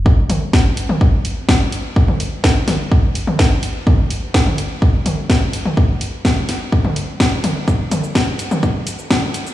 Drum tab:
HH |--o---o---o---o-|--o---o---o---o-|--o---o---o---o-|--o---o---o---o-|
SH |----------------|----------------|----------------|----------------|
SD |----o-------o---|----o-o-----o---|----o-------o---|----o-o-----o---|
T2 |--o----o----o---|-o----o----o----|o----o----o----o|----o----o----o-|
BD |o---o---o---o---|o---o---o---o---|o---o---o---o---|o---o---o---o---|

HH |--o---o---o---o-|
SH |x-xxx-xxx-xxx-xx|
SD |----o-------o---|
T2 |--o----o----o---|
BD |o---o---o---o---|